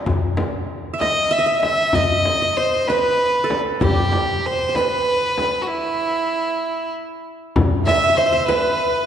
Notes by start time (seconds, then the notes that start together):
0.06 frame drum, darbuka dum
0.37 darbuka tek, frame drum
0.94 E5
1.00 D#5, darbuka tek, frame drum
1.31 E5, darbuka ka
1.39 D#5
1.46 E5, darbuka ka
1.62 E5, darbuka tek, frame drum
1.93 D#5, frame drum, darbuka dum
2.25 darbuka tek, frame drum
2.42 D#5
2.57 C5
2.88 B4, darbuka tek, frame drum
3.19 darbuka ka
3.35 darbuka ka
3.44 A4
3.50 darbuka tek, frame drum
3.81 G4, frame drum, darbuka dum
4.12 darbuka tek, frame drum
4.46 C5
4.69 C5
4.75 B4, darbuka tek, frame drum
5.07 darbuka ka
5.23 darbuka ka
5.38 darbuka tek, frame drum
5.62 F#4
5.68 E4
7.56 frame drum, darbuka dum
7.87 E5, darbuka tek, frame drum
7.95 E5
8.04 E5
8.10 E5
8.17 C5 E5
8.26 E5
8.33 E5
8.47 B4, darbuka tek, frame drum
8.81 darbuka ka
8.96 darbuka ka